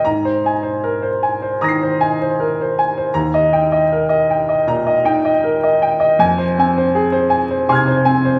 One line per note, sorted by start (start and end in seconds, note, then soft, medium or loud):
0.05 1.57 G#2 soft
0.05 0.36 A#5 medium
0.25 0.56 C5 soft
0.44 1.06 D#4 soft
0.44 0.76 G#5 soft
0.63 0.94 C5 soft
0.84 1.14 A#4 soft
1.03 1.33 C5 soft
1.23 1.53 G#5 soft
1.42 1.73 C5 soft
1.61 2.23 D#3 soft
1.61 1.92 A#5 soft
1.61 3.11 D#6 soft
1.61 3.12 A#6 soft
1.68 3.14 C7 soft
1.83 2.12 C5 soft
2.01 2.62 D#4 soft
2.01 2.31 G#5 soft
2.22 2.51 C5 soft
2.40 2.69 A#4 soft
2.61 2.90 C5 soft
2.79 3.08 G#5 soft
2.98 3.15 C5 soft
3.14 4.63 D#2 soft
3.14 3.45 A#5 medium
3.34 3.64 D#5 soft
3.53 4.13 D#4 soft
3.53 3.83 G5 soft
3.72 4.02 D#5 soft
3.92 4.22 A#4 soft
4.09 4.40 D#5 soft
4.30 4.60 G5 soft
4.49 4.79 D#5 soft
4.67 5.28 A#2 soft
4.67 4.98 A#5 medium
4.87 5.17 D#5 medium
5.05 5.66 D#4 medium
5.05 5.36 G5 medium
5.25 5.55 D#5 soft
5.44 5.74 A#4 soft
5.63 5.94 D#5 soft
5.82 6.12 G5 medium
6.00 6.19 D#5 medium
6.19 7.65 F2 medium
6.19 6.50 G#5 medium
6.38 6.68 C5 medium
6.58 7.18 C4 soft
6.58 6.88 G#5 medium
6.78 7.07 C5 medium
6.95 7.25 G#4 medium
7.12 7.43 C5 medium
7.30 7.61 G#5 soft
7.51 7.81 C5 soft
7.69 8.30 C3 medium
7.69 7.99 G#5 medium
7.69 8.39 C6 soft
7.69 8.39 F6 soft
7.75 8.39 G#6 soft
7.88 8.18 C5 soft
8.05 8.39 C4 medium
8.05 8.36 G#5 medium
8.25 8.39 C5 medium